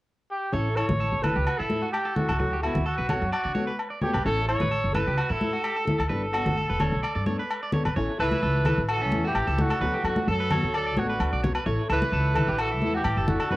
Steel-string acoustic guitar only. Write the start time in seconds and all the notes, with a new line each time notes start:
0.52 C#4 E4 A4
0.76 E4 A4
1.22 E4 A4
1.69 E4 A4
2.16 E4 A4
2.39 F#3 F#4 A4, muted steel-string acoustic guitar stroke
2.62 B3 F#4 A4
3.09 B3 F#4 A4
3.56 B3 F#4 A4
4.02 B3 F#4 A4
4.24 C#4 E4 A4
4.46 E4 A4
4.93 E4 A4
5.40 E4 A4
5.85 E4 A4
6.09 G3 B3 D4 A4
6.33 B3 D4 A4
6.80 B3 D4 A4
7.26 B3 D4 A4
7.73 B3 D4 A4
7.96 C#4 E4 A4
8.18 E4 A4
8.66 E4 A4
9.13 E4 A4
9.58 E4 A4
9.81 F#3 B3 F#4 A4
10.05 F#4 A4, muted steel-string acoustic guitar stroke
10.51 B3 F#4 A4
10.97 B3 F#4 A4
11.43 B3 F#4, muted steel-string acoustic guitar stroke
11.66 E4 A4, muted steel-string acoustic guitar stroke
11.89 E4 A4
12.34 E4 A4
12.80 E4 A4
13.27 E4 A4
13.51 G3 B3 D4 A4